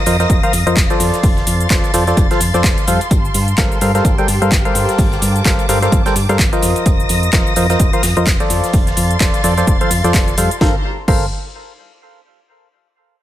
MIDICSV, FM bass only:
0, 0, Header, 1, 2, 480
1, 0, Start_track
1, 0, Key_signature, -2, "minor"
1, 0, Tempo, 468750
1, 1265, Time_signature, 4, 2, 24, 8
1, 13544, End_track
2, 0, Start_track
2, 0, Title_t, "FM bass"
2, 0, Program_c, 0, 39
2, 64, Note_on_c, 0, 41, 85
2, 261, Note_off_c, 0, 41, 0
2, 305, Note_on_c, 0, 29, 102
2, 414, Note_off_c, 0, 29, 0
2, 545, Note_on_c, 0, 41, 91
2, 654, Note_off_c, 0, 41, 0
2, 682, Note_on_c, 0, 41, 97
2, 763, Note_off_c, 0, 41, 0
2, 784, Note_on_c, 0, 29, 98
2, 893, Note_off_c, 0, 29, 0
2, 1025, Note_on_c, 0, 41, 95
2, 1133, Note_off_c, 0, 41, 0
2, 1264, Note_on_c, 0, 29, 104
2, 1461, Note_off_c, 0, 29, 0
2, 1505, Note_on_c, 0, 41, 95
2, 1702, Note_off_c, 0, 41, 0
2, 1744, Note_on_c, 0, 29, 83
2, 1853, Note_off_c, 0, 29, 0
2, 1985, Note_on_c, 0, 41, 84
2, 2182, Note_off_c, 0, 41, 0
2, 2225, Note_on_c, 0, 29, 98
2, 2334, Note_off_c, 0, 29, 0
2, 2464, Note_on_c, 0, 41, 87
2, 2573, Note_off_c, 0, 41, 0
2, 2602, Note_on_c, 0, 41, 102
2, 2683, Note_off_c, 0, 41, 0
2, 2704, Note_on_c, 0, 29, 99
2, 2813, Note_off_c, 0, 29, 0
2, 2944, Note_on_c, 0, 41, 95
2, 3053, Note_off_c, 0, 41, 0
2, 3184, Note_on_c, 0, 31, 100
2, 3381, Note_off_c, 0, 31, 0
2, 3425, Note_on_c, 0, 43, 92
2, 3622, Note_off_c, 0, 43, 0
2, 3664, Note_on_c, 0, 31, 85
2, 3773, Note_off_c, 0, 31, 0
2, 3906, Note_on_c, 0, 43, 85
2, 4102, Note_off_c, 0, 43, 0
2, 4145, Note_on_c, 0, 31, 102
2, 4254, Note_off_c, 0, 31, 0
2, 4386, Note_on_c, 0, 43, 88
2, 4494, Note_off_c, 0, 43, 0
2, 4524, Note_on_c, 0, 43, 96
2, 4604, Note_off_c, 0, 43, 0
2, 4625, Note_on_c, 0, 31, 99
2, 4734, Note_off_c, 0, 31, 0
2, 4865, Note_on_c, 0, 43, 91
2, 4974, Note_off_c, 0, 43, 0
2, 5104, Note_on_c, 0, 31, 103
2, 5301, Note_off_c, 0, 31, 0
2, 5345, Note_on_c, 0, 43, 95
2, 5542, Note_off_c, 0, 43, 0
2, 5585, Note_on_c, 0, 31, 86
2, 5694, Note_off_c, 0, 31, 0
2, 5826, Note_on_c, 0, 43, 86
2, 6022, Note_off_c, 0, 43, 0
2, 6064, Note_on_c, 0, 31, 103
2, 6173, Note_off_c, 0, 31, 0
2, 6305, Note_on_c, 0, 43, 87
2, 6414, Note_off_c, 0, 43, 0
2, 6443, Note_on_c, 0, 43, 100
2, 6523, Note_off_c, 0, 43, 0
2, 6545, Note_on_c, 0, 31, 103
2, 6654, Note_off_c, 0, 31, 0
2, 6787, Note_on_c, 0, 41, 94
2, 6895, Note_off_c, 0, 41, 0
2, 7025, Note_on_c, 0, 29, 99
2, 7222, Note_off_c, 0, 29, 0
2, 7267, Note_on_c, 0, 41, 98
2, 7463, Note_off_c, 0, 41, 0
2, 7505, Note_on_c, 0, 29, 85
2, 7614, Note_off_c, 0, 29, 0
2, 7746, Note_on_c, 0, 41, 86
2, 7942, Note_off_c, 0, 41, 0
2, 7985, Note_on_c, 0, 29, 99
2, 8094, Note_off_c, 0, 29, 0
2, 8226, Note_on_c, 0, 41, 89
2, 8334, Note_off_c, 0, 41, 0
2, 8365, Note_on_c, 0, 41, 100
2, 8444, Note_off_c, 0, 41, 0
2, 8465, Note_on_c, 0, 29, 100
2, 8574, Note_off_c, 0, 29, 0
2, 8706, Note_on_c, 0, 41, 94
2, 8814, Note_off_c, 0, 41, 0
2, 8945, Note_on_c, 0, 29, 104
2, 9142, Note_off_c, 0, 29, 0
2, 9186, Note_on_c, 0, 41, 95
2, 9382, Note_off_c, 0, 41, 0
2, 9426, Note_on_c, 0, 29, 86
2, 9534, Note_off_c, 0, 29, 0
2, 9664, Note_on_c, 0, 41, 86
2, 9861, Note_off_c, 0, 41, 0
2, 9906, Note_on_c, 0, 29, 86
2, 10014, Note_off_c, 0, 29, 0
2, 10144, Note_on_c, 0, 41, 95
2, 10253, Note_off_c, 0, 41, 0
2, 10282, Note_on_c, 0, 41, 98
2, 10363, Note_off_c, 0, 41, 0
2, 10386, Note_on_c, 0, 29, 83
2, 10582, Note_off_c, 0, 29, 0
2, 10624, Note_on_c, 0, 41, 82
2, 10733, Note_off_c, 0, 41, 0
2, 10865, Note_on_c, 0, 31, 100
2, 11012, Note_off_c, 0, 31, 0
2, 11345, Note_on_c, 0, 31, 99
2, 11568, Note_off_c, 0, 31, 0
2, 13544, End_track
0, 0, End_of_file